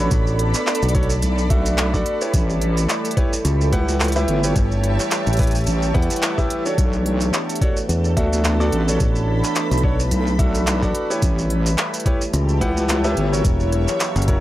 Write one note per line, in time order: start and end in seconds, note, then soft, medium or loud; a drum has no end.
0.00 6.74 A3 medium
0.00 2.30 B3 medium
0.00 0.92 D4 medium
0.00 2.30 D4 medium
0.00 0.92 F#4 medium
0.00 0.92 A4 medium
0.00 3.41 A4 medium
0.00 0.92 C#5 medium
0.00 2.34 D5 medium
0.00 4.13 B5 medium
0.11 0.52 A1 loud
0.11 kick loud
0.11 closed hi-hat medium
0.11 maracas medium
0.27 maracas soft
0.39 cross-stick soft
0.39 closed hi-hat medium
0.54 clap soft
0.54 closed hi-hat soft
0.54 maracas medium
0.67 clap loud
0.67 maracas medium
0.75 closed hi-hat medium
0.82 1.20 B1 medium
0.82 closed hi-hat soft
0.82 maracas soft
0.89 closed hi-hat medium
0.95 1.09 D4 medium
0.95 1.09 F#4 medium
0.95 1.09 A4 medium
0.95 1.09 C#5 loud
0.95 kick loud
0.95 closed hi-hat medium
1.03 closed hi-hat soft
1.10 maracas medium
1.22 2.04 B1 loud
1.22 closed hi-hat medium
1.22 maracas medium
1.38 maracas soft
1.50 1.90 D4 medium
1.50 1.90 F#4 medium
1.50 1.90 A4 medium
1.50 1.90 E5 loud
1.50 kick loud
1.50 closed hi-hat medium
1.66 closed hi-hat soft
1.66 maracas medium
1.78 clap loud
1.78 closed hi-hat medium
1.78 maracas medium
1.94 2.18 D4 loud
1.94 2.18 F#4 medium
1.94 2.18 A4 medium
1.94 2.18 D5 loud
1.94 kick medium
1.94 maracas soft
2.06 closed hi-hat medium
2.21 3.14 E4 medium
2.21 3.14 G4 medium
2.21 3.14 B4 medium
2.21 3.14 C#5 medium
2.21 maracas medium
2.34 2.87 A1 loud
2.34 14.40 E3 medium
2.34 6.74 G3 medium
2.34 6.74 E4 medium
2.34 6.78 G4 loud
2.34 kick loud
2.34 closed hi-hat medium
2.34 maracas medium
2.50 maracas soft
2.61 closed hi-hat medium
2.68 6.78 C#5 medium
2.77 closed hi-hat soft
2.77 maracas medium
2.89 clap loud
2.89 closed hi-hat medium
2.89 maracas medium
3.01 7.93 E5 medium
3.01 closed hi-hat medium
3.01 maracas soft
3.11 closed hi-hat medium
3.17 3.31 E4 medium
3.17 3.31 G4 medium
3.17 3.31 B4 medium
3.17 3.31 C#5 loud
3.17 kick loud
3.17 closed hi-hat medium
3.33 maracas medium
3.40 7.46 A5 loud
3.45 3.71 C#2 loud
3.45 closed hi-hat medium
3.45 maracas medium
3.61 maracas soft
3.73 4.26 C#2 loud
3.73 4.12 E4 loud
3.73 4.12 G4 medium
3.73 4.12 B4 medium
3.73 4.12 F#5 loud
3.73 kick medium
3.73 closed hi-hat medium
3.88 maracas medium
4.00 clap loud
4.00 closed hi-hat soft
4.00 maracas medium
4.04 closed hi-hat soft
4.08 closed hi-hat medium
4.12 4.40 E4 loud
4.12 4.40 G4 medium
4.12 4.40 B4 medium
4.12 4.40 E5 loud
4.12 cross-stick soft
4.12 closed hi-hat medium
4.12 maracas soft
4.28 4.54 G1 loud
4.28 closed hi-hat medium
4.44 5.36 E4 medium
4.44 5.36 G4 medium
4.44 5.36 B4 medium
4.44 5.36 C#5 medium
4.44 maracas medium
4.56 4.97 G1 medium
4.56 kick loud
4.56 closed hi-hat medium
4.56 maracas medium
4.72 maracas soft
4.84 cross-stick soft
4.84 closed hi-hat medium
4.99 clap soft
4.99 closed hi-hat soft
4.99 maracas medium
5.11 clap loud
5.11 closed hi-hat medium
5.11 maracas medium
5.27 5.65 A1 medium
5.27 closed hi-hat soft
5.27 maracas soft
5.33 closed hi-hat medium
5.37 closed hi-hat soft
5.39 5.53 E4 medium
5.39 5.53 G4 medium
5.39 5.53 B4 medium
5.39 5.53 C#5 loud
5.39 kick loud
5.39 closed hi-hat medium
5.42 closed hi-hat soft
5.42 closed hi-hat medium
5.47 closed hi-hat soft
5.51 closed hi-hat soft
5.55 closed hi-hat soft
5.55 maracas medium
5.57 closed hi-hat soft
5.61 closed hi-hat soft
5.64 closed hi-hat soft
5.64 maracas medium
5.67 5.93 A1 loud
5.67 closed hi-hat medium
5.82 maracas soft
5.94 6.08 E2 loud
5.94 6.34 E4 loud
5.94 6.34 G4 medium
5.94 6.34 B4 medium
5.94 6.34 F#5 loud
5.94 kick loud
5.94 closed hi-hat soft
6.02 closed hi-hat soft
6.10 closed hi-hat soft
6.10 maracas medium
6.16 closed hi-hat medium
6.22 clap loud
6.22 closed hi-hat medium
6.22 maracas medium
6.38 6.62 E4 loud
6.38 6.62 G4 medium
6.38 6.62 B4 medium
6.38 6.62 E5 loud
6.38 kick medium
6.38 maracas soft
6.50 closed hi-hat medium
6.66 7.58 D4 medium
6.66 7.58 F#4 medium
6.66 7.58 A4 medium
6.66 7.58 C#5 medium
6.66 maracas medium
6.78 7.32 B1 loud
6.78 13.41 A3 medium
6.78 11.18 B3 medium
6.78 11.19 D4 medium
6.78 12.12 A4 medium
6.78 kick loud
6.78 closed hi-hat medium
6.78 maracas medium
6.93 maracas soft
7.06 closed hi-hat medium
7.21 closed hi-hat soft
7.21 maracas medium
7.33 clap loud
7.33 closed hi-hat medium
7.33 maracas medium
7.49 closed hi-hat soft
7.49 maracas soft
7.56 closed hi-hat medium
7.61 7.76 D4 medium
7.61 7.76 F#4 medium
7.61 7.76 A4 medium
7.61 7.76 C#5 loud
7.61 kick loud
7.61 closed hi-hat medium
7.76 12.12 B5 medium
7.76 maracas medium
7.89 8.15 E2 loud
7.89 closed hi-hat medium
7.89 maracas medium
8.04 maracas soft
8.17 8.71 D2 loud
8.17 8.56 D4 loud
8.17 8.56 F#4 medium
8.17 8.56 A4 medium
8.17 8.56 E5 loud
8.17 kick medium
8.17 closed hi-hat medium
8.33 maracas medium
8.44 clap loud
8.44 closed hi-hat medium
8.44 maracas medium
8.60 8.84 D4 loud
8.60 8.84 F#4 medium
8.60 8.84 A4 medium
8.60 8.84 D5 loud
8.60 cross-stick soft
8.60 maracas soft
8.72 8.98 A1 loud
8.72 closed hi-hat medium
8.88 9.81 D4 medium
8.88 9.81 F#4 medium
8.88 9.81 A4 medium
8.88 9.81 C#5 medium
8.88 maracas medium
9.00 9.41 A1 loud
9.00 kick loud
9.00 closed hi-hat medium
9.00 maracas medium
9.16 maracas soft
9.28 cross-stick soft
9.44 clap soft
9.44 closed hi-hat soft
9.44 maracas medium
9.55 clap loud
9.55 closed hi-hat medium
9.55 maracas medium
9.71 10.09 B1 medium
9.71 closed hi-hat soft
9.71 maracas soft
9.78 closed hi-hat medium
9.83 9.98 D4 medium
9.83 9.98 F#4 medium
9.83 9.98 A4 medium
9.83 9.98 C#5 loud
9.83 kick loud
10.00 maracas medium
10.11 10.93 B1 loud
10.11 closed hi-hat medium
10.11 maracas medium
10.27 maracas soft
10.39 10.79 D4 loud
10.39 10.79 F#4 medium
10.39 10.79 A4 medium
10.39 10.79 E5 loud
10.39 kick loud
10.39 closed hi-hat medium
10.55 closed hi-hat soft
10.55 maracas medium
10.67 clap loud
10.67 closed hi-hat medium
10.67 maracas medium
10.82 11.06 D4 loud
10.82 11.06 F#4 medium
10.82 11.06 A4 medium
10.82 11.07 D5 loud
10.82 kick medium
10.82 maracas soft
10.95 closed hi-hat medium
11.10 12.03 E4 medium
11.10 12.03 G4 medium
11.10 12.03 B4 medium
11.10 12.03 C#5 medium
11.10 maracas medium
11.22 11.76 A1 loud
11.22 13.42 G3 medium
11.22 14.40 E4 medium
11.22 13.45 G4 medium
11.22 kick loud
11.22 closed hi-hat medium
11.22 maracas medium
11.36 14.40 C#5 medium
11.36 maracas soft
11.50 closed hi-hat medium
11.61 14.40 E5 medium
11.66 13.45 A5 medium
11.66 closed hi-hat soft
11.66 maracas medium
11.78 clap loud
11.78 closed hi-hat medium
11.78 maracas medium
11.94 closed hi-hat soft
11.94 maracas soft
12.00 closed hi-hat medium
12.06 12.20 E4 loud
12.06 12.20 G4 medium
12.06 12.20 B4 medium
12.06 12.20 C#5 loud
12.06 kick loud
12.06 closed hi-hat medium
12.21 maracas medium
12.33 12.59 C#2 loud
12.33 closed hi-hat medium
12.33 maracas medium
12.49 maracas soft
12.61 13.15 C#2 loud
12.61 13.01 E4 loud
12.61 13.01 G4 medium
12.61 13.01 B4 medium
12.61 13.01 F#5 loud
12.61 kick medium
12.61 closed hi-hat medium
12.77 maracas medium
12.88 clap loud
12.88 closed hi-hat medium
12.88 maracas medium
13.04 13.29 E4 loud
13.04 13.29 G4 medium
13.04 13.29 B4 medium
13.04 13.29 E5 loud
13.04 cross-stick soft
13.04 maracas soft
13.08 cross-stick soft
13.11 cross-stick soft
13.14 13.43 G1 loud
13.14 cross-stick soft
13.17 cross-stick soft
13.17 closed hi-hat medium
13.21 cross-stick soft
13.25 cross-stick soft
13.29 14.25 E4 medium
13.29 14.25 F#4 medium
13.29 14.25 A#4 medium
13.29 14.25 C#5 medium
13.29 cross-stick soft
13.33 maracas medium
13.45 13.86 E1 medium
13.45 14.40 F#3 medium
13.45 14.40 A#3 medium
13.45 14.40 F#4 medium
13.45 kick loud
13.45 closed hi-hat medium
13.45 maracas medium
13.60 maracas soft
13.72 cross-stick soft
13.72 closed hi-hat medium
13.88 clap soft
13.88 closed hi-hat soft
13.88 maracas medium
14.00 clap loud
14.00 closed hi-hat medium
14.00 maracas medium
14.16 14.40 F#1 loud
14.16 closed hi-hat medium
14.16 maracas soft
14.22 closed hi-hat medium
14.28 14.40 E4 medium
14.28 14.40 F#4 medium
14.28 14.40 A#4 medium
14.28 14.40 C#5 loud
14.28 kick loud
14.28 closed hi-hat medium